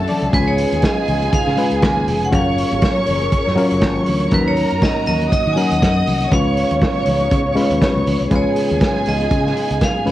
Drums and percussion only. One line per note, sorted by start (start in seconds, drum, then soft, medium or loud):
0.00 high conga medium
0.07 open hi-hat medium
0.07 muted conga soft
0.07 low conga medium
0.21 closed hi-hat soft
0.33 kick loud
0.33 closed hi-hat medium
0.33 muted conga soft
0.33 low conga medium
0.58 open hi-hat medium
0.58 high conga soft
0.72 closed hi-hat soft
0.72 high conga medium
0.82 kick loud
0.82 snare loud
0.82 closed hi-hat medium
0.82 muted conga soft
0.97 high conga medium
1.08 open hi-hat medium
1.08 muted conga soft
1.08 low conga medium
1.22 closed hi-hat soft
1.22 high conga medium
1.33 kick loud
1.33 closed hi-hat medium
1.48 snare soft
1.57 open hi-hat medium
1.57 muted conga soft
1.71 closed hi-hat soft
1.82 kick loud
1.82 snare loud
1.82 closed hi-hat medium
1.82 muted conga soft
1.82 high conga medium
1.99 high conga medium
2.08 open hi-hat medium
2.08 low conga medium
2.21 closed hi-hat soft
2.33 kick loud
2.33 closed hi-hat medium
2.33 low conga medium
2.58 open hi-hat medium
2.58 high conga soft
2.72 closed hi-hat medium
2.72 high conga medium
2.82 kick loud
2.82 snare medium
2.82 closed hi-hat medium
2.97 high conga medium
3.06 open hi-hat medium
3.06 low conga medium
3.21 closed hi-hat soft
3.21 high conga medium
3.32 kick loud
3.32 closed hi-hat medium
3.32 muted conga soft
3.47 snare soft
3.57 open hi-hat medium
3.57 muted conga soft
3.71 closed hi-hat soft
3.81 kick loud
3.81 snare loud
3.81 closed hi-hat medium
3.81 muted conga soft
3.81 high conga medium
3.98 high conga medium
4.06 open hi-hat medium
4.06 muted conga soft
4.06 low conga medium
4.20 closed hi-hat soft
4.31 kick loud
4.31 closed hi-hat medium
4.31 low conga medium
4.57 open hi-hat medium
4.57 muted conga soft
4.57 high conga medium
4.71 closed hi-hat soft
4.71 high conga medium
4.82 kick loud
4.82 snare loud
4.82 closed hi-hat medium
4.96 high conga medium
5.06 open hi-hat medium
5.06 muted conga soft
5.06 low conga medium
5.21 closed hi-hat soft
5.21 high conga medium
5.32 kick loud
5.32 closed hi-hat medium
5.57 open hi-hat medium
5.71 closed hi-hat soft
5.82 kick loud
5.82 snare loud
5.82 closed hi-hat medium
5.82 muted conga soft
5.82 high conga medium
5.98 high conga medium
6.07 open hi-hat medium
6.07 low conga medium
6.21 closed hi-hat soft
6.32 kick loud
6.32 closed hi-hat medium
6.32 low conga medium
6.57 open hi-hat medium
6.57 muted conga soft
6.57 high conga soft
6.71 closed hi-hat soft
6.71 high conga medium
6.81 kick loud
6.81 snare loud
6.81 closed hi-hat medium
6.81 muted conga soft
6.96 high conga medium
7.06 open hi-hat medium
7.06 low conga medium
7.20 closed hi-hat soft
7.20 high conga medium
7.31 kick loud
7.31 closed hi-hat medium
7.31 muted conga soft
7.57 open hi-hat medium
7.57 muted conga soft
7.71 closed hi-hat soft
7.82 kick loud
7.82 snare loud
7.82 closed hi-hat medium
7.82 high conga medium
7.98 high conga medium
8.07 open hi-hat medium
8.07 low conga medium
8.19 closed hi-hat soft
8.31 kick loud
8.31 closed hi-hat medium
8.31 muted conga soft
8.31 low conga medium
8.56 open hi-hat medium
8.56 muted conga soft
8.56 high conga soft
8.70 closed hi-hat soft
8.70 high conga medium
8.81 kick loud
8.81 snare loud
8.81 closed hi-hat medium
8.81 muted conga soft
8.96 high conga medium
9.05 open hi-hat medium
9.05 low conga medium
9.20 closed hi-hat soft
9.20 high conga medium
9.31 kick loud
9.31 closed hi-hat medium
9.31 muted conga soft
9.46 snare soft
9.56 open hi-hat medium
9.56 muted conga soft
9.70 closed hi-hat soft
9.81 kick loud
9.81 snare loud
9.81 closed hi-hat medium
9.81 muted conga soft
9.81 high conga medium
9.98 high conga medium
10.07 open hi-hat medium
10.07 low conga medium